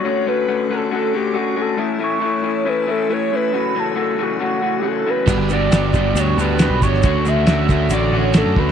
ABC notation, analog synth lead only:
X:1
M:4/4
L:1/16
Q:1/4=137
K:D
V:1 name="Analog synth lead"
c2 B4 A2 A2 G2 F2 A2- | A2 c6 B2 A2 c2 B2- | B2 A4 F2 F3- F/2 G/2 A2 B2- | B2 d6 c2 B2 B2 c2- |
c2 e6 d2 c2 A2 B2 |]